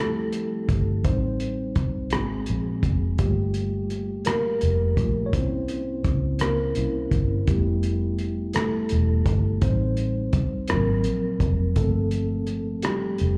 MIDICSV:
0, 0, Header, 1, 4, 480
1, 0, Start_track
1, 0, Tempo, 714286
1, 703, Time_signature, 6, 3, 24, 8
1, 8989, End_track
2, 0, Start_track
2, 0, Title_t, "Tine electric piano"
2, 0, Program_c, 0, 4
2, 0, Control_c, 0, 64, 127
2, 0, Note_on_c, 0, 53, 41
2, 0, Note_on_c, 0, 55, 50
2, 0, Note_on_c, 0, 57, 55
2, 0, Note_on_c, 0, 60, 35
2, 0, Note_on_c, 0, 64, 40
2, 0, Note_on_c, 0, 67, 65
2, 0, Note_on_c, 0, 69, 78
2, 677, Note_off_c, 0, 69, 0
2, 682, Note_off_c, 0, 57, 0
2, 706, Note_on_c, 0, 72, 75
2, 707, Note_off_c, 0, 55, 0
2, 707, Note_on_c, 0, 55, 37
2, 710, Note_off_c, 0, 60, 0
2, 710, Note_on_c, 0, 60, 61
2, 711, Control_c, 0, 64, 0
2, 713, Note_off_c, 0, 64, 0
2, 715, Note_on_c, 0, 63, 46
2, 716, Note_off_c, 0, 53, 0
2, 716, Note_off_c, 0, 67, 0
2, 830, Control_c, 0, 64, 127
2, 1398, Note_off_c, 0, 55, 0
2, 1402, Note_off_c, 0, 63, 0
2, 1403, Note_off_c, 0, 60, 0
2, 1430, Note_on_c, 0, 68, 69
2, 1431, Note_on_c, 0, 58, 44
2, 1433, Control_c, 0, 64, 0
2, 1436, Note_on_c, 0, 60, 42
2, 1439, Note_on_c, 0, 66, 48
2, 1441, Note_on_c, 0, 56, 60
2, 1446, Note_off_c, 0, 72, 0
2, 1536, Control_c, 0, 64, 127
2, 1746, Note_off_c, 0, 58, 0
2, 1749, Note_off_c, 0, 60, 0
2, 1750, Note_off_c, 0, 66, 0
2, 2125, Note_off_c, 0, 56, 0
2, 2148, Note_on_c, 0, 57, 43
2, 2148, Note_on_c, 0, 67, 68
2, 2151, Note_on_c, 0, 58, 39
2, 2152, Control_c, 0, 64, 0
2, 2157, Note_on_c, 0, 65, 45
2, 2158, Note_on_c, 0, 55, 52
2, 2168, Note_off_c, 0, 68, 0
2, 2285, Control_c, 0, 64, 127
2, 2465, Note_off_c, 0, 57, 0
2, 2466, Note_off_c, 0, 58, 0
2, 2469, Note_off_c, 0, 65, 0
2, 2843, Note_off_c, 0, 55, 0
2, 2864, Note_on_c, 0, 70, 80
2, 2872, Note_on_c, 0, 58, 65
2, 2887, Note_off_c, 0, 67, 0
2, 3341, Note_off_c, 0, 58, 0
2, 3347, Note_on_c, 0, 57, 43
2, 3349, Note_on_c, 0, 58, 40
2, 3352, Note_on_c, 0, 65, 46
2, 3536, Note_on_c, 0, 73, 75
2, 3556, Note_off_c, 0, 70, 0
2, 3561, Note_off_c, 0, 57, 0
2, 3562, Note_off_c, 0, 58, 0
2, 3564, Note_off_c, 0, 65, 0
2, 3583, Note_off_c, 0, 73, 0
2, 3588, Note_on_c, 0, 58, 39
2, 3590, Control_c, 0, 64, 0
2, 3590, Note_on_c, 0, 72, 68
2, 3591, Note_on_c, 0, 61, 36
2, 3596, Note_on_c, 0, 64, 45
2, 3598, Note_on_c, 0, 60, 60
2, 3694, Control_c, 0, 64, 127
2, 3905, Note_off_c, 0, 58, 0
2, 3906, Note_off_c, 0, 61, 0
2, 3909, Note_off_c, 0, 64, 0
2, 4283, Note_off_c, 0, 60, 0
2, 4308, Note_on_c, 0, 70, 76
2, 4317, Note_on_c, 0, 58, 62
2, 4328, Note_off_c, 0, 72, 0
2, 4545, Note_off_c, 0, 58, 0
2, 4553, Note_on_c, 0, 58, 42
2, 4556, Note_on_c, 0, 61, 41
2, 4559, Note_on_c, 0, 64, 42
2, 4764, Note_off_c, 0, 58, 0
2, 4766, Note_off_c, 0, 61, 0
2, 4768, Note_off_c, 0, 64, 0
2, 5025, Note_on_c, 0, 67, 60
2, 5026, Note_on_c, 0, 55, 52
2, 5028, Note_on_c, 0, 57, 35
2, 5030, Control_c, 0, 64, 0
2, 5033, Note_on_c, 0, 59, 35
2, 5033, Note_on_c, 0, 64, 44
2, 5047, Note_off_c, 0, 70, 0
2, 5147, Control_c, 0, 64, 127
2, 5718, Note_off_c, 0, 57, 0
2, 5721, Note_off_c, 0, 59, 0
2, 5721, Note_off_c, 0, 64, 0
2, 5722, Note_off_c, 0, 55, 0
2, 5743, Note_on_c, 0, 69, 74
2, 5753, Note_on_c, 0, 57, 59
2, 5765, Note_off_c, 0, 67, 0
2, 6441, Note_off_c, 0, 57, 0
2, 6467, Note_on_c, 0, 55, 43
2, 6468, Note_on_c, 0, 72, 75
2, 6470, Control_c, 0, 64, 0
2, 6472, Note_on_c, 0, 60, 58
2, 6477, Note_on_c, 0, 63, 45
2, 6484, Note_off_c, 0, 69, 0
2, 6570, Control_c, 0, 64, 127
2, 6784, Note_off_c, 0, 55, 0
2, 6789, Note_off_c, 0, 63, 0
2, 7162, Note_off_c, 0, 60, 0
2, 7186, Note_on_c, 0, 70, 70
2, 7187, Note_on_c, 0, 54, 45
2, 7190, Note_on_c, 0, 58, 55
2, 7192, Control_c, 0, 64, 0
2, 7194, Note_on_c, 0, 60, 53
2, 7207, Note_off_c, 0, 72, 0
2, 7319, Control_c, 0, 64, 127
2, 7504, Note_off_c, 0, 54, 0
2, 7508, Note_off_c, 0, 60, 0
2, 7877, Note_off_c, 0, 70, 0
2, 7883, Note_off_c, 0, 58, 0
2, 7903, Note_on_c, 0, 53, 40
2, 7904, Note_on_c, 0, 69, 71
2, 7909, Note_on_c, 0, 57, 52
2, 7911, Note_on_c, 0, 58, 37
2, 7912, Control_c, 0, 64, 0
2, 7912, Note_on_c, 0, 60, 46
2, 8034, Control_c, 0, 64, 127
2, 8222, Note_off_c, 0, 53, 0
2, 8226, Note_off_c, 0, 58, 0
2, 8227, Note_off_c, 0, 60, 0
2, 8600, Note_off_c, 0, 57, 0
2, 8623, Note_on_c, 0, 67, 74
2, 8635, Note_on_c, 0, 55, 54
2, 8645, Note_off_c, 0, 69, 0
2, 8989, Note_off_c, 0, 55, 0
2, 8989, Note_off_c, 0, 67, 0
2, 8989, End_track
3, 0, Start_track
3, 0, Title_t, "Fingered electric bass"
3, 0, Program_c, 1, 33
3, 0, Note_on_c, 1, 38, 72
3, 237, Note_off_c, 1, 38, 0
3, 237, Note_on_c, 1, 36, 80
3, 446, Note_off_c, 1, 36, 0
3, 467, Note_on_c, 1, 31, 74
3, 709, Note_off_c, 1, 31, 0
3, 709, Note_on_c, 1, 33, 65
3, 1159, Note_off_c, 1, 33, 0
3, 1190, Note_on_c, 1, 36, 68
3, 1431, Note_off_c, 1, 36, 0
3, 1431, Note_on_c, 1, 32, 83
3, 1643, Note_off_c, 1, 32, 0
3, 1678, Note_on_c, 1, 34, 78
3, 1887, Note_off_c, 1, 34, 0
3, 1908, Note_on_c, 1, 29, 65
3, 2122, Note_off_c, 1, 29, 0
3, 2150, Note_on_c, 1, 31, 79
3, 3079, Note_off_c, 1, 31, 0
3, 3112, Note_on_c, 1, 29, 72
3, 3324, Note_off_c, 1, 29, 0
3, 3347, Note_on_c, 1, 34, 74
3, 3561, Note_off_c, 1, 34, 0
3, 3589, Note_on_c, 1, 36, 78
3, 4039, Note_off_c, 1, 36, 0
3, 4069, Note_on_c, 1, 37, 62
3, 4519, Note_off_c, 1, 37, 0
3, 4552, Note_on_c, 1, 36, 72
3, 4764, Note_off_c, 1, 36, 0
3, 4785, Note_on_c, 1, 31, 74
3, 5000, Note_off_c, 1, 31, 0
3, 5033, Note_on_c, 1, 29, 82
3, 5961, Note_off_c, 1, 29, 0
3, 5997, Note_on_c, 1, 28, 74
3, 6207, Note_off_c, 1, 28, 0
3, 6228, Note_on_c, 1, 31, 72
3, 6442, Note_off_c, 1, 31, 0
3, 6472, Note_on_c, 1, 33, 68
3, 6921, Note_off_c, 1, 33, 0
3, 6950, Note_on_c, 1, 36, 61
3, 7198, Note_on_c, 1, 32, 91
3, 7208, Note_off_c, 1, 36, 0
3, 7435, Note_off_c, 1, 32, 0
3, 7435, Note_on_c, 1, 34, 77
3, 7645, Note_off_c, 1, 34, 0
3, 7669, Note_on_c, 1, 29, 74
3, 7882, Note_off_c, 1, 29, 0
3, 7910, Note_on_c, 1, 31, 79
3, 8840, Note_off_c, 1, 31, 0
3, 8878, Note_on_c, 1, 29, 78
3, 8989, Note_off_c, 1, 29, 0
3, 8989, End_track
4, 0, Start_track
4, 0, Title_t, "Drums"
4, 218, Note_on_c, 9, 42, 47
4, 285, Note_off_c, 9, 42, 0
4, 461, Note_on_c, 9, 36, 73
4, 462, Note_on_c, 9, 42, 46
4, 529, Note_off_c, 9, 36, 0
4, 529, Note_off_c, 9, 42, 0
4, 701, Note_on_c, 9, 42, 52
4, 703, Note_on_c, 9, 36, 87
4, 769, Note_off_c, 9, 42, 0
4, 770, Note_off_c, 9, 36, 0
4, 940, Note_on_c, 9, 42, 47
4, 1007, Note_off_c, 9, 42, 0
4, 1179, Note_on_c, 9, 42, 35
4, 1182, Note_on_c, 9, 36, 73
4, 1247, Note_off_c, 9, 42, 0
4, 1250, Note_off_c, 9, 36, 0
4, 1413, Note_on_c, 9, 42, 59
4, 1429, Note_on_c, 9, 37, 86
4, 1481, Note_off_c, 9, 42, 0
4, 1496, Note_off_c, 9, 37, 0
4, 1654, Note_on_c, 9, 42, 49
4, 1721, Note_off_c, 9, 42, 0
4, 1901, Note_on_c, 9, 36, 78
4, 1902, Note_on_c, 9, 42, 46
4, 1968, Note_off_c, 9, 36, 0
4, 1969, Note_off_c, 9, 42, 0
4, 2140, Note_on_c, 9, 42, 57
4, 2143, Note_on_c, 9, 36, 97
4, 2207, Note_off_c, 9, 42, 0
4, 2210, Note_off_c, 9, 36, 0
4, 2378, Note_on_c, 9, 42, 46
4, 2445, Note_off_c, 9, 42, 0
4, 2622, Note_on_c, 9, 42, 36
4, 2689, Note_off_c, 9, 42, 0
4, 2855, Note_on_c, 9, 42, 63
4, 2870, Note_on_c, 9, 37, 87
4, 2922, Note_off_c, 9, 42, 0
4, 2937, Note_off_c, 9, 37, 0
4, 3098, Note_on_c, 9, 42, 49
4, 3165, Note_off_c, 9, 42, 0
4, 3341, Note_on_c, 9, 36, 74
4, 3343, Note_on_c, 9, 42, 42
4, 3408, Note_off_c, 9, 36, 0
4, 3410, Note_off_c, 9, 42, 0
4, 3583, Note_on_c, 9, 36, 92
4, 3584, Note_on_c, 9, 42, 58
4, 3650, Note_off_c, 9, 36, 0
4, 3651, Note_off_c, 9, 42, 0
4, 3819, Note_on_c, 9, 42, 47
4, 3887, Note_off_c, 9, 42, 0
4, 4061, Note_on_c, 9, 42, 42
4, 4062, Note_on_c, 9, 36, 75
4, 4128, Note_off_c, 9, 42, 0
4, 4130, Note_off_c, 9, 36, 0
4, 4294, Note_on_c, 9, 42, 57
4, 4310, Note_on_c, 9, 37, 79
4, 4361, Note_off_c, 9, 42, 0
4, 4377, Note_off_c, 9, 37, 0
4, 4536, Note_on_c, 9, 42, 46
4, 4603, Note_off_c, 9, 42, 0
4, 4781, Note_on_c, 9, 36, 76
4, 4782, Note_on_c, 9, 42, 42
4, 4848, Note_off_c, 9, 36, 0
4, 4849, Note_off_c, 9, 42, 0
4, 5022, Note_on_c, 9, 42, 53
4, 5024, Note_on_c, 9, 36, 83
4, 5090, Note_off_c, 9, 42, 0
4, 5091, Note_off_c, 9, 36, 0
4, 5261, Note_on_c, 9, 42, 48
4, 5329, Note_off_c, 9, 42, 0
4, 5501, Note_on_c, 9, 42, 39
4, 5568, Note_off_c, 9, 42, 0
4, 5735, Note_on_c, 9, 42, 57
4, 5751, Note_on_c, 9, 37, 84
4, 5802, Note_off_c, 9, 42, 0
4, 5818, Note_off_c, 9, 37, 0
4, 5975, Note_on_c, 9, 42, 47
4, 6042, Note_off_c, 9, 42, 0
4, 6220, Note_on_c, 9, 42, 44
4, 6221, Note_on_c, 9, 36, 81
4, 6288, Note_off_c, 9, 36, 0
4, 6288, Note_off_c, 9, 42, 0
4, 6461, Note_on_c, 9, 42, 55
4, 6464, Note_on_c, 9, 36, 98
4, 6529, Note_off_c, 9, 42, 0
4, 6531, Note_off_c, 9, 36, 0
4, 6698, Note_on_c, 9, 42, 44
4, 6766, Note_off_c, 9, 42, 0
4, 6940, Note_on_c, 9, 42, 42
4, 6943, Note_on_c, 9, 36, 83
4, 7007, Note_off_c, 9, 42, 0
4, 7010, Note_off_c, 9, 36, 0
4, 7174, Note_on_c, 9, 42, 59
4, 7190, Note_on_c, 9, 37, 90
4, 7241, Note_off_c, 9, 42, 0
4, 7257, Note_off_c, 9, 37, 0
4, 7418, Note_on_c, 9, 42, 48
4, 7485, Note_off_c, 9, 42, 0
4, 7661, Note_on_c, 9, 36, 81
4, 7662, Note_on_c, 9, 42, 44
4, 7729, Note_off_c, 9, 36, 0
4, 7730, Note_off_c, 9, 42, 0
4, 7901, Note_on_c, 9, 42, 63
4, 7904, Note_on_c, 9, 36, 96
4, 7968, Note_off_c, 9, 42, 0
4, 7972, Note_off_c, 9, 36, 0
4, 8139, Note_on_c, 9, 42, 47
4, 8206, Note_off_c, 9, 42, 0
4, 8377, Note_on_c, 9, 42, 39
4, 8444, Note_off_c, 9, 42, 0
4, 8618, Note_on_c, 9, 42, 60
4, 8634, Note_on_c, 9, 37, 83
4, 8685, Note_off_c, 9, 42, 0
4, 8701, Note_off_c, 9, 37, 0
4, 8859, Note_on_c, 9, 42, 47
4, 8927, Note_off_c, 9, 42, 0
4, 8989, End_track
0, 0, End_of_file